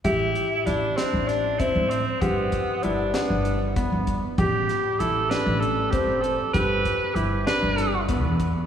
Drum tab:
HH |xxxxxxx|xxxxxxx|xxxxxxx|xxxxxxx|
SD |--ooo--|---o---|-o-o---|---oo--|
BD |o----o-|oo---oo|o----o-|oo---oo|